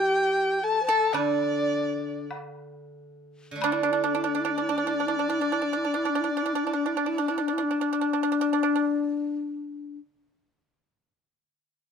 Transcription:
0.00 2.29 E3 medium
0.00 0.61 G4 loud
0.00 0.83 G4 medium
0.00 0.65 G5 loud
0.63 0.80 A4 medium
0.63 0.86 A5 loud
0.83 0.91 C5 medium
0.87 1.13 A4 loud
0.87 1.15 A4 loud
0.87 1.15 A5 loud
1.13 3.50 D3 medium
1.13 2.26 D4 medium
1.13 2.27 D4 medium
1.13 2.29 D5 loud
1.13 high woodblock medium
2.31 high woodblock soft
2.31 low woodblock soft
3.51 10.14 D3 medium
3.56 9.21 A3 medium
3.61 8.36 D4 medium
3.61 3.74 D4 medium
3.61 3.71 D4 medium
3.61 8.07 D5 medium
3.61 high woodblock medium
3.72 3.82 D4 medium
3.72 3.84 E4 medium
3.83 3.93 D4 medium
3.83 3.92 D4 medium
3.91 4.02 D4 medium
3.91 4.06 E4 medium
4.04 4.13 D4 medium
4.04 4.18 D4 medium
4.15 4.23 D4 medium
4.15 4.29 E4 medium
4.24 4.33 D4 medium
4.24 4.42 D4 medium
4.35 4.44 D4 medium
4.40 4.53 E4 medium
4.45 4.55 D4 medium
4.51 4.64 D4 medium
4.58 4.67 D4 medium
4.62 4.73 E4 medium
4.69 4.76 D4 medium
4.69 4.85 D4 medium
4.78 4.86 D4 medium
4.84 4.97 D4 medium
4.84 4.95 E4 medium
4.94 5.08 D4 medium
5.00 5.07 D4 medium
5.06 5.18 D4 medium
5.06 5.18 E4 medium
5.16 5.30 D4 medium
5.16 5.28 D4 medium
5.29 5.39 D4 medium
5.29 5.41 E4 medium
5.40 5.54 D4 medium
5.40 5.50 D4 medium
5.52 5.61 D4 medium
5.52 5.65 E4 medium
5.62 5.71 D4 medium
5.62 5.78 D4 medium
5.73 5.82 D4 medium
5.73 5.88 E4 medium
5.85 5.93 D4 medium
5.85 5.98 D4 medium
5.94 6.03 D4 medium
5.94 6.10 E4 medium
6.05 6.13 D4 medium
6.05 6.22 D4 medium
6.15 6.23 D4 medium
6.20 6.33 D4 medium
6.20 6.32 E4 medium
6.30 6.44 D4 medium
6.37 6.44 D4 medium
6.43 6.54 D4 medium
6.43 6.54 E4 medium
6.53 6.65 D4 medium
6.53 6.64 D4 medium
6.64 6.72 D4 medium
6.64 6.76 E4 medium
6.73 6.84 D4 medium
6.73 6.88 D4 medium
6.86 6.95 D4 medium
6.86 6.98 E4 medium
6.96 7.09 D4 medium
6.96 7.05 D4 medium
7.06 7.16 D4 medium
7.06 7.21 E4 medium
7.18 7.27 D4 medium
7.18 7.32 D4 medium
7.28 7.37 D4 medium
7.28 7.43 E4 medium
7.38 7.47 D4 medium
7.38 7.55 D4 medium
7.48 7.57 D4 medium
7.53 7.64 E4 medium
7.58 7.68 D4 medium
7.63 9.98 D4 loud
7.71 7.80 D4 medium
7.81 7.90 D4 medium
7.93 8.00 D4 medium
8.01 8.11 D4 medium
8.13 8.22 D4 medium
8.23 8.31 D4 medium
8.32 8.40 D4 medium
8.41 8.52 D4 medium
8.53 8.62 D4 medium
8.63 8.73 D4 medium
8.76 8.85 D4 medium

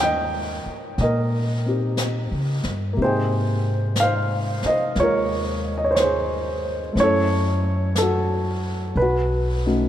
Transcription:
0.00 0.61 D#2 medium
0.00 2.95 G3 soft
0.00 2.92 A#3 soft
0.00 2.99 C#4 soft
0.00 3.01 F4 medium
0.00 1.03 A#4 medium
0.00 2.99 C#5 medium
0.00 0.96 D#5 medium
0.00 1.02 G5 medium
0.66 muted upright bass stroke soft
0.98 2.27 A#2 medium
0.98 2.63 D#5 medium
0.98 brush sweep soft
0.98 snare soft
1.03 2.64 A#4 medium
1.66 2.98 C4 soft
1.66 2.98 D#4 soft
1.66 2.99 G4 soft
1.97 brush sweep soft
1.97 snare soft
1.97 hi-hat pedal soft
2.31 2.62 C#3 medium
2.63 2.95 G2 medium
2.63 snare soft
2.93 4.61 G#2 medium
2.93 6.95 A#3 soft
2.93 brush sweep soft
2.97 6.97 C3 soft
2.97 6.98 D#4 soft
3.02 3.97 G#4 medium
3.02 4.01 C5 medium
3.02 7.00 G5 soft
3.96 brush sweep soft
3.96 snare soft
3.96 hi-hat pedal medium
4.00 4.62 C5 medium
4.00 4.67 F5 medium
4.62 4.96 D#5 medium
4.62 muted upright bass stroke soft
4.62 snare soft
4.69 4.98 C5 medium
4.95 6.92 D#2 medium
4.95 6.97 G#3 soft
4.95 brush sweep soft
4.95 snare soft
5.00 6.98 F4 soft
5.00 5.72 A#4 medium
5.00 5.71 C#5 medium
5.78 5.81 D#5 medium
5.84 5.88 C#5 medium
5.91 5.94 C5 medium
5.95 5.99 C#5 medium
5.95 brush sweep soft
5.95 snare soft
5.95 hi-hat pedal soft
6.00 6.78 C5 medium
6.04 6.80 G#4 medium
6.93 8.92 F#2 medium
6.93 8.94 A3 soft
6.93 8.96 C#4 soft
6.97 8.98 E4 soft
6.97 7.94 C#5 medium
6.97 brush sweep soft
6.97 snare soft
7.03 7.96 A4 medium
7.96 8.93 A4 medium
7.96 brush sweep soft
7.96 snare soft
7.96 hi-hat pedal medium
8.02 8.95 F#4 medium
8.95 9.89 B1 medium
8.95 9.89 B4 medium
8.95 brush sweep soft
9.02 9.66 F#4 medium
9.66 9.89 A3 soft
9.66 9.89 C#4 soft
9.66 9.89 D#4 soft
9.66 9.89 F#4 soft

